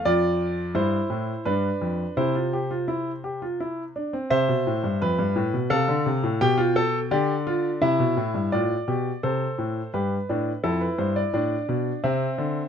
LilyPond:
<<
  \new Staff \with { instrumentName = "Grand piano" } { \time 3/4 \key c \major \tempo 4 = 85 << { d''4 c''4 b'4 | c''2~ c''8 r8 | e''2 f''4 | g''4 d''4 e''4 |
d''4 c''4 b'4 | a'16 b'16 c''16 d''4~ d''16 e''4 | } \\ { f'4 e'4 d'4 | e'16 f'16 g'16 f'16 e'8 g'16 f'16 e'8 d'16 c'16 | c''4 b'4 a'4 | g'16 f'16 a'8 g'8 f'8 e'4 |
f'8 g'8 a'4 g'8 d'8 | e'4 d'4 c'4 | } >> }
  \new Staff \with { instrumentName = "Grand piano" } { \clef bass \time 3/4 \key c \major f,4 g,8 a,8 g,8 f,8 | c2~ c8 r8 | c16 b,16 a,16 g,16 f,16 g,16 a,16 b,16 c16 d16 c16 a,16 | b,4 d4 c16 b,16 a,16 g,16 |
a,8 b,8 c8 a,8 g,8 a,8 | f,8 g,8 a,8 b,8 c8 d8 | }
>>